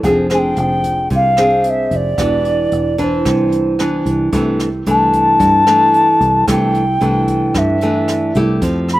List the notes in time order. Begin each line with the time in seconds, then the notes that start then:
0.03 F1 F3 C4 D4 G#4, kick, closed hi-hat
0.30 C4 D4 G#4 G#5, cross-stick, closed hi-hat
0.37 G5
0.56 F1, closed hi-hat
0.84 kick, closed hi-hat
1.10 C2 C3, kick, closed hi-hat
1.15 F5
1.37 C4 D4 G#4, cross-stick, closed hi-hat
1.64 closed hi-hat
1.69 E5
1.91 F1, kick, closed hi-hat
1.95 D5
2.18 E1 E3 B3 D4 G4, kick, cross-stick, closed hi-hat
2.45 closed hi-hat
2.72 E1, closed hi-hat
2.98 E3 D4, kick, closed hi-hat
3.03 C5
3.25 C2 C3, kick, cross-stick, closed hi-hat
3.52 closed hi-hat
3.79 E3 B3 D4, cross-stick, closed hi-hat
4.06 C2, kick, closed hi-hat
4.32 C2 C3 E3 A3 D4, kick, closed hi-hat
4.60 cross-stick, closed hi-hat
4.86 C2 E3 A3 D4 A5, closed hi-hat
5.13 kick, closed hi-hat
5.40 G2, kick, closed hi-hat
5.67 E3 A3 D4, cross-stick, closed hi-hat
5.94 closed hi-hat
6.20 C2, kick, closed hi-hat
6.47 C2 C3 E3 A3 D4 G5, kick, cross-stick, closed hi-hat
6.75 closed hi-hat
7.01 C2 E3 A3 D4, closed hi-hat
7.28 kick, closed hi-hat
7.54 G2 E5, kick, cross-stick, closed hi-hat
7.81 E3 A3 D4, closed hi-hat
8.08 cross-stick, closed hi-hat
8.35 C2 A3 E4 G4, kick, closed hi-hat
8.62 F2 F3, kick, closed hi-hat
8.89 B5, cross-stick, closed hi-hat